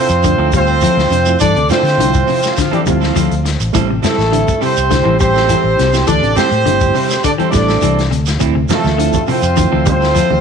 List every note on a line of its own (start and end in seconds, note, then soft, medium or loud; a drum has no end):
0.00 0.18 C3 medium
0.00 0.51 C4 medium
0.00 0.51 F4 medium
0.00 0.51 C5 loud
0.09 0.34 F2 medium
0.09 closed hi-hat soft
0.09 shekere medium
0.23 0.37 D3 medium
0.23 0.53 F3 medium
0.23 0.53 A3 medium
0.23 0.54 C4 medium
0.23 0.53 D4 medium
0.23 muted clean electric guitar stroke soft
0.23 kick medium
0.23 closed hi-hat medium
0.23 shekere medium
0.38 0.86 D2 loud
0.38 0.51 F3 medium
0.38 0.52 C4 medium
0.38 0.52 E4 medium
0.38 0.52 A4 medium
0.38 muted clean electric guitar stroke medium
0.52 0.76 G3 medium
0.52 1.38 C4 loud
0.52 1.38 C5 loud
0.52 kick medium
0.52 closed hi-hat medium
0.52 shekere medium
0.56 1.39 F4 medium
0.67 0.81 C4 soft
0.67 0.82 A4 medium
0.67 shekere soft
0.81 1.00 F3 medium
0.81 1.05 F3 medium
0.81 1.01 C4 medium
0.81 1.01 E4 medium
0.81 1.01 A4 medium
0.81 closed hi-hat medium
0.81 shekere medium
0.97 1.09 D2 medium
0.97 snare soft
1.10 1.35 F2 medium
1.10 1.35 C3 medium
1.10 1.17 C4 medium
1.10 1.17 D4 medium
1.10 muted clean electric guitar stroke soft
1.10 closed hi-hat medium
1.10 shekere soft
1.26 1.41 F3 medium
1.26 1.41 A3 medium
1.26 1.41 C4 medium
1.26 1.41 E4 medium
1.26 shekere medium
1.40 1.54 G2 loud
1.40 1.53 E3 loud
1.40 1.68 D4 loud
1.40 1.69 A4 loud
1.40 1.68 D5 loud
1.40 kick loud
1.40 closed hi-hat medium
1.40 shekere medium
1.55 1.67 D2 medium
1.55 1.79 C3 medium
1.55 muted clean electric guitar stroke soft
1.55 closed hi-hat soft
1.69 1.85 F3 medium
1.69 1.80 F3 medium
1.69 1.80 A3 medium
1.69 1.83 C4 medium
1.69 1.81 C4 medium
1.69 2.54 C4 loud
1.69 1.80 D4 medium
1.69 1.83 E4 medium
1.69 2.60 F4 loud
1.69 1.83 A4 medium
1.69 2.54 C5 loud
1.69 snare medium
1.69 closed hi-hat medium
1.69 shekere medium
1.83 1.99 D3 medium
1.83 muted clean electric guitar stroke soft
1.83 closed hi-hat soft
1.83 shekere soft
1.87 snare soft
1.98 2.22 C2 loud
1.98 2.23 D3 medium
1.98 2.28 F3 medium
1.98 2.28 A3 medium
1.98 2.29 C4 medium
1.98 2.29 E4 loud
1.98 muted clean electric guitar stroke soft
1.98 closed hi-hat medium
2.13 muted clean electric guitar stroke medium
2.13 kick medium
2.13 shekere loud
2.26 2.52 C3 medium
2.26 2.43 F3 medium
2.26 2.41 C4 medium
2.26 2.41 E4 medium
2.26 open hi-hat medium
2.26 shekere soft
2.42 muted clean electric guitar stroke soft
2.42 snare soft
2.42 closed hi-hat soft
2.42 shekere medium
2.56 2.70 D3 medium
2.56 2.73 F3 medium
2.56 2.74 C4 medium
2.56 2.73 F4 loud
2.56 muted clean electric guitar stroke soft
2.56 kick medium
2.56 snare soft
2.56 closed hi-hat medium
2.56 shekere medium
2.71 2.84 E3 medium
2.71 2.84 F3 medium
2.71 2.79 G3 medium
2.71 2.85 C4 medium
2.71 2.81 D4 medium
2.71 2.85 E4 medium
2.71 2.79 G4 medium
2.71 2.85 A4 medium
2.71 muted fingered electric bass stroke soft
2.71 closed hi-hat soft
2.86 3.10 D2 medium
2.86 3.16 F3 medium
2.86 3.42 F3 medium
2.86 3.10 G3 medium
2.86 3.16 A3 medium
2.86 3.16 C4 medium
2.86 3.42 C4 medium
2.86 3.16 E4 medium
2.86 3.42 F4 medium
2.86 muted clean electric guitar stroke soft
2.86 kick medium
2.86 closed hi-hat medium
2.86 shekere medium
3.01 3.14 C4 soft
3.01 3.15 E4 medium
3.01 3.15 A4 medium
3.01 snare soft
3.01 shekere soft
3.15 3.28 D2 medium
3.15 3.34 F3 medium
3.15 3.39 F3 medium
3.15 3.34 C4 medium
3.15 3.34 E4 medium
3.15 3.34 A4 medium
3.15 closed hi-hat medium
3.15 shekere medium
3.31 3.55 D2 loud
3.31 closed hi-hat soft
3.45 muted clean electric guitar stroke soft
3.45 snare soft
3.45 closed hi-hat medium
3.45 shekere soft
3.60 3.72 A1 medium
3.60 closed hi-hat soft
3.60 shekere medium
3.73 3.98 A1 loud
3.73 3.86 E3 loud
3.73 3.94 G3 medium
3.73 3.89 G3 loud
3.73 3.94 A3 medium
3.73 3.89 C4 loud
3.73 3.94 C4 medium
3.73 3.89 E4 medium
3.73 3.94 E4 loud
3.73 3.88 A4 loud
3.73 kick loud
3.73 closed hi-hat medium
3.73 shekere medium
3.89 4.13 C3 medium
3.89 muted clean electric guitar stroke soft
4.02 4.18 G3 medium
4.02 4.59 A3 medium
4.02 4.17 C4 medium
4.02 4.19 E4 medium
4.02 4.58 E4 medium
4.02 4.17 A4 medium
4.02 4.59 A4 medium
4.02 snare medium
4.02 closed hi-hat medium
4.02 shekere medium
4.18 4.42 A1 medium
4.18 muted clean electric guitar stroke soft
4.18 snare soft
4.18 shekere soft
4.32 4.55 D3 medium
4.32 4.52 G3 medium
4.32 4.52 A3 medium
4.32 4.52 C4 medium
4.32 4.53 E4 medium
4.32 muted clean electric guitar stroke soft
4.32 closed hi-hat medium
4.47 muted clean electric guitar stroke soft
4.47 kick medium
4.47 closed hi-hat soft
4.47 shekere medium
4.60 4.85 C3 medium
4.60 4.76 G3 medium
4.60 4.75 C4 medium
4.60 5.17 C4 medium
4.60 4.75 E4 medium
4.60 5.16 G4 medium
4.60 4.74 A4 medium
4.60 5.17 C5 loud
4.60 open hi-hat medium
4.60 shekere soft
4.76 5.01 C2 medium
4.76 muted clean electric guitar stroke soft
4.76 closed hi-hat soft
4.76 shekere medium
4.89 5.03 D3 loud
4.89 5.20 G3 medium
4.89 5.20 A3 medium
4.89 5.20 C4 medium
4.89 5.20 E4 medium
4.89 muted clean electric guitar stroke soft
4.89 kick medium
4.89 snare soft
4.89 closed hi-hat medium
4.89 shekere medium
5.03 5.53 A1 loud
5.03 5.17 E3 medium
5.03 5.17 G3 medium
5.03 5.17 C4 medium
5.03 5.17 E4 medium
5.03 5.17 A4 medium
5.18 5.43 G3 medium
5.18 6.03 C4 loud
5.18 6.04 G4 medium
5.18 6.03 C5 loud
5.18 muted clean electric guitar stroke soft
5.18 kick medium
5.18 closed hi-hat medium
5.18 shekere loud
5.33 5.47 C4 medium
5.33 5.47 E4 soft
5.33 5.47 A4 medium
5.33 snare soft
5.33 shekere soft
5.47 5.72 E3 medium
5.47 5.66 G3 medium
5.47 5.67 C4 medium
5.47 5.67 E4 medium
5.47 5.67 A4 medium
5.47 closed hi-hat medium
5.47 shekere medium
5.64 5.76 A1 medium
5.77 6.03 C2 medium
5.77 6.02 C3 medium
5.77 5.83 C4 medium
5.77 5.83 E4 medium
5.77 muted clean electric guitar stroke soft
5.77 snare soft
5.77 closed hi-hat medium
5.77 shekere soft
5.93 6.07 G3 medium
5.93 6.08 A3 medium
5.93 6.08 C4 medium
5.93 6.08 E4 medium
5.93 snare soft
5.93 shekere medium
6.07 6.20 D2 loud
6.07 6.19 E3 loud
6.07 6.34 D4 loud
6.07 6.35 A4 loud
6.07 6.34 D5 loud
6.07 kick loud
6.07 closed hi-hat medium
6.07 shekere medium
6.22 6.34 A1 medium
6.22 6.45 C3 medium
6.22 muted clean electric guitar stroke soft
6.22 closed hi-hat soft
6.35 6.51 G3 medium
6.35 6.47 G3 medium
6.35 6.47 A3 medium
6.35 7.20 C4 loud
6.35 6.50 C4 medium
6.35 6.47 C4 medium
6.35 6.50 E4 medium
6.35 6.47 E4 medium
6.35 7.21 G4 loud
6.35 6.50 A4 medium
6.35 7.20 C5 loud
6.35 snare medium
6.35 closed hi-hat medium
6.35 shekere loud
6.51 6.67 A2 medium
6.51 muted clean electric guitar stroke soft
6.51 closed hi-hat soft
6.51 shekere soft
6.64 6.89 G1 loud
6.64 6.88 D3 medium
6.64 6.94 G3 medium
6.64 6.95 A3 medium
6.64 6.95 C4 medium
6.64 6.95 E4 medium
6.64 muted clean electric guitar stroke soft
6.64 closed hi-hat medium
6.80 muted clean electric guitar stroke soft
6.80 kick medium
6.80 shekere medium
6.94 7.17 C3 medium
6.94 7.10 G3 medium
6.94 7.09 C4 medium
6.94 7.09 E4 medium
6.94 muted clean electric guitar stroke medium
6.94 open hi-hat medium
6.94 shekere soft
7.10 muted clean electric guitar stroke soft
7.10 snare soft
7.10 closed hi-hat soft
7.10 shekere medium
7.23 7.36 D3 loud
7.23 7.31 D4 loud
7.23 7.32 A4 medium
7.23 7.31 D5 loud
7.23 muted clean electric guitar stroke soft
7.23 kick medium
7.23 closed hi-hat medium
7.23 shekere medium
7.38 7.50 E3 medium
7.38 7.54 G3 medium
7.38 7.52 C4 medium
7.38 7.52 E4 medium
7.38 7.53 G4 medium
7.38 7.52 A4 medium
7.38 7.52 C5 medium
7.38 muted fingered electric bass stroke soft
7.38 closed hi-hat soft
7.50 7.77 A1 medium
7.50 7.82 G3 medium
7.50 7.76 G3 medium
7.50 7.82 A3 medium
7.50 7.82 C4 medium
7.50 8.06 D4 medium
7.50 7.82 E4 medium
7.50 8.06 D5 medium
7.50 muted clean electric guitar stroke soft
7.50 kick medium
7.50 snare soft
7.50 closed hi-hat medium
7.50 shekere loud
7.54 8.08 A4 medium
7.68 7.82 C4 soft
7.68 7.82 E4 medium
7.68 7.82 A4 medium
7.68 snare soft
7.68 shekere soft
7.81 8.09 C2 medium
7.81 8.05 E3 medium
7.81 8.01 G3 medium
7.81 8.01 C4 medium
7.81 8.01 E4 medium
7.81 8.01 A4 medium
7.81 closed hi-hat medium
7.81 shekere medium
7.99 snare soft
7.99 closed hi-hat soft
8.11 8.38 D2 medium
8.11 8.34 C3 medium
8.11 muted clean electric guitar stroke soft
8.11 closed hi-hat medium
8.11 shekere soft
8.26 snare soft
8.26 closed hi-hat soft
8.26 shekere medium
8.39 8.64 D2 loud
8.39 8.60 F3 medium
8.39 8.56 F3 medium
8.39 8.60 A3 medium
8.39 8.60 C4 medium
8.39 8.55 C4 medium
8.39 8.60 E4 loud
8.39 8.54 E4 medium
8.39 muted clean electric guitar stroke medium
8.39 kick loud
8.39 closed hi-hat medium
8.39 shekere medium
8.55 8.78 C3 medium
8.55 muted clean electric guitar stroke soft
8.69 8.85 F3 medium
8.69 9.24 A3 medium
8.69 8.84 C4 medium
8.69 9.30 F4 medium
8.69 9.24 A4 loud
8.69 8.85 A4 medium
8.69 snare medium
8.69 closed hi-hat medium
8.69 high conga medium
8.69 shekere medium
8.84 9.08 D2 medium
8.84 muted clean electric guitar stroke soft
8.84 snare soft
8.84 high conga medium
8.84 shekere soft
8.98 9.21 D3 medium
8.98 9.19 F3 medium
8.98 9.19 A3 medium
8.98 9.19 C4 medium
8.98 9.19 E4 medium
8.98 muted clean electric guitar stroke soft
8.98 closed hi-hat medium
9.13 muted clean electric guitar stroke medium
9.13 kick medium
9.13 closed hi-hat soft
9.13 high conga medium
9.13 shekere medium
9.27 9.51 C3 medium
9.27 9.43 F3 medium
9.27 9.42 C4 medium
9.27 9.87 C4 loud
9.27 9.42 E4 medium
9.27 9.88 F4 medium
9.27 9.42 A4 medium
9.27 9.87 C5 loud
9.27 open hi-hat medium
9.27 low conga medium
9.27 shekere soft
9.42 9.66 F2 medium
9.42 muted clean electric guitar stroke soft
9.42 closed hi-hat soft
9.42 shekere medium
9.57 9.69 D3 loud
9.57 9.86 F3 medium
9.57 9.87 A3 medium
9.57 9.86 C4 medium
9.57 9.87 E4 medium
9.57 muted clean electric guitar stroke soft
9.57 kick medium
9.57 closed hi-hat medium
9.57 high conga medium
9.57 shekere medium
9.72 10.20 D2 loud
9.72 9.83 E3 medium
9.72 9.85 F3 medium
9.72 9.85 C4 medium
9.72 9.85 E4 medium
9.72 9.85 A4 medium
9.86 10.09 G3 medium
9.86 10.41 C4 loud
9.86 10.41 C5 loud
9.86 muted clean electric guitar stroke soft
9.86 kick medium
9.86 closed hi-hat medium
9.86 high conga loud
9.86 shekere loud
9.90 10.41 F4 medium
10.01 10.13 C4 soft
10.01 10.14 E4 soft
10.01 10.14 A4 medium
10.01 snare soft
10.01 shekere soft
10.14 10.33 F3 medium
10.14 10.38 F3 medium
10.14 10.33 E4 medium
10.14 10.34 A4 medium
10.14 muted clean electric guitar stroke medium
10.14 closed hi-hat medium
10.14 shekere medium
10.30 10.41 D2 medium
10.30 high conga medium